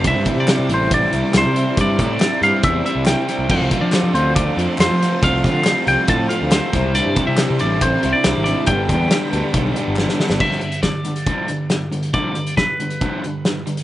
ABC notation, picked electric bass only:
X:1
M:4/4
L:1/16
Q:1/4=139
K:Gmix
V:1 name="Picked electric bass" clef=bass
C,, G,, z C,2 C, A,,,4 C,, z C,, C,2 z | G,,2 A,,2 z2 G,, z E,,2 z C,,2 z2 C,, | F,, C,, z F,2 F, D,,4 F,, z F,, F,2 z | C,,2 D,2 z2 C,, z A,,2 z D,,2 z C,,2- |
C,, G,, z C,2 C, A,,,4 C,, z C,, _A,,,2 z | G,,,2 E,,2 z2 D,, z B,,,2 z G,,,2 z2 G,,, | z16 | z16 |]